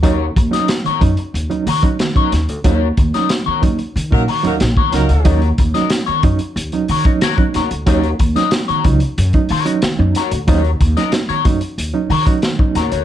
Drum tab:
HH |x-xxxxxxxxoxxxxx|x-xxx-xxx-oxx-xx|xxxxxxxxxxoxxxxx|xxxxxxxxxxoxx-xx|
SD |---oo-------o-o-|---oo-------o-o-|---oo-------o-o-|---oo-------o-o-|
BD |o-o---o----o-o--|o-o---o--o---o--|o-o---o----o-o--|o-o---o--o------|

HH |xxxxxxxxx-oxx-xx|
SD |---oo-------o-o-|
BD |o-o---o----o-o--|